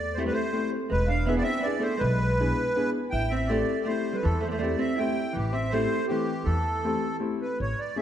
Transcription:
Already playing: upright bass E2, hollow-body jazz guitar A3, accordion D5
0.14 upright piano A3 C4 E4 G4, accordion C5
0.19 hollow-body jazz guitar A3
0.26 hollow-body jazz guitar G3, accordion B4
0.32 hollow-body jazz guitar A3, accordion C5
0.53 upright piano A3 C4 E4 G4
0.90 upright bass E1, hollow-body jazz guitar G#3, accordion B4
1.08 hollow-body jazz guitar D4, accordion F5
1.26 hollow-body jazz guitar B3, upright piano B3 D4 E4 G#4, accordion E5
1.37 hollow-body jazz guitar B3, accordion D5
1.42 hollow-body jazz guitar C4, accordion E5
1.60 hollow-body jazz guitar B3, accordion D5
1.65 upright piano B3 D4 E4 G#4
1.80 hollow-body jazz guitar A3, accordion C5
1.97 hollow-body jazz guitar G#3, accordion B4
2.01 upright bass B1
2.40 upright piano B3 D4 E4 G#4
2.76 upright piano B3 D4 E4 G#4
3.10 upright bass A1, hollow-body jazz guitar E4, accordion G5
3.30 hollow-body jazz guitar C4, accordion E5
3.47 upright piano A3 C4 E4 G4, hollow-body jazz guitar A3, accordion D5
3.85 hollow-body jazz guitar A3, upright piano A3 C4 E4 G4, accordion C5
4.13 hollow-body jazz guitar G3, accordion B4
4.23 upright bass E2, hollow-body jazz guitar E3, accordion A4
4.40 hollow-body jazz guitar A3, accordion C5
4.48 hollow-body jazz guitar A3 B3, accordion C5 D5
4.59 hollow-body jazz guitar A3, upright piano A3 C4 E4, accordion D5
4.63 upright piano G4
4.79 hollow-body jazz guitar C4, accordion E5
4.96 upright piano A3, hollow-body jazz guitar E4, accordion G5
5.00 upright piano C4 E4 G4
5.33 upright bass A1, hollow-body jazz guitar E3, accordion G4
5.53 hollow-body jazz guitar C4, accordion E5
5.70 hollow-body jazz guitar A3, upright piano A3 C4 E4, accordion C5
5.74 upright piano G4
6.08 hollow-body jazz guitar E3, upright piano A3 C4 E4 G4, accordion G4
6.45 upright bass E2, hollow-body jazz guitar E3, accordion A4
6.84 upright piano A3 C4 E4 G4
7.20 upright piano A3 C4 E4 G4
7.42 accordion B4
7.60 upright bass A1, accordion C#5
7.79 accordion D5
7.96 upright piano A3 C#4 E4 G#4, accordion E5

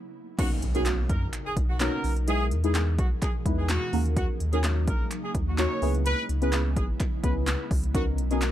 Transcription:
0.38 ambient pad B2 C#3 D#4 A#4, synth stab A#3 B3 C#4 D#4 F#4, horn section F#4, kick, closed hi-hat, crash, impact
0.62 sub bass B1, closed hi-hat
0.75 synth stab A#3 B3 C#4 D#4 F#4, horn section G#4, closed hi-hat
0.86 snare, clap, closed hi-hat
1.09 sub bass F#2, horn section A#4, kick, closed hi-hat
1.33 clap, closed hi-hat
1.46 horn section G#4
1.57 sub bass B1, kick, closed hi-hat
1.69 horn section F#4
1.80 synth stab A#3 B3 C#4 D#4 F#4, horn section A#4, snare, clap, closed hi-hat
2.04 sub bass B1, open hi-hat
2.17 closed hi-hat
2.27 ambient pad E3 G#3 G#4, synth stab G#3 B3 D#4 E4 G#4, horn section G#4, closed hi-hat
2.51 sub bass E2, closed hi-hat
2.64 synth stab G#3 B3 D#4 E4 G#4, horn section G#4, closed hi-hat
2.75 snare, clap, closed hi-hat
2.99 sub bass B1, horn section F#4, kick, closed hi-hat
3.22 horn section G#4, kick, clap, closed hi-hat
3.45 sub bass E2, synth stab G#3 B3 D#4 E4 B4, kick, closed hi-hat
3.58 horn section G#4
3.69 horn section F#4, snare, clap, closed hi-hat
3.93 sub bass D#2, ambient pad C#3 F#3 A#3 D#4, synth stab A#3 C#4 D#4 F#4 A#4, open hi-hat
4.05 closed hi-hat
4.17 horn section F#4, kick, closed hi-hat
4.40 sub bass D#2, closed hi-hat
4.53 synth stab A#3 C#4 D#4 F#4 A#4, horn section G#4, closed hi-hat
4.64 snare, clap, closed hi-hat
4.87 sub bass A#1, horn section A#4, kick, closed hi-hat
5.11 clap, closed hi-hat
5.24 horn section G#4
5.35 sub bass D#2, kick, closed hi-hat
5.47 horn section F#4
5.58 synth stab A#3 C#4 D#4 F#4 A#4, horn section C#5, snare, clap, closed hi-hat
5.82 sub bass C#2, ambient pad C#3 G#3 B3 E4, synth stab B3 C#4 E4 G#4 B4, open hi-hat
5.95 closed hi-hat
6.06 horn section B4, closed hi-hat
6.29 sub bass C#2, closed hi-hat
6.42 synth stab B3 C#4 E4 G#4 B4, horn section B4, closed hi-hat
6.53 snare, clap, closed hi-hat
6.76 sub bass G#1, horn section G#4, kick, closed hi-hat
7.00 kick, clap, closed hi-hat
7.24 sub bass C#2, synth stab B3 C#4 E4 G#4 B4, horn section B4, kick, closed hi-hat
7.47 snare, clap, closed hi-hat
7.71 sub bass C#2, kick, open hi-hat
7.83 closed hi-hat
7.94 ambient pad C#3 D#4 A#4, synth stab B3 C#4 D#4 F#4 A#4, horn section F#4, kick, closed hi-hat
8.18 sub bass B1, closed hi-hat
8.31 synth stab B3 C#4 D#4 F#4 A#4, horn section G#4, closed hi-hat
8.42 snare, clap, closed hi-hat

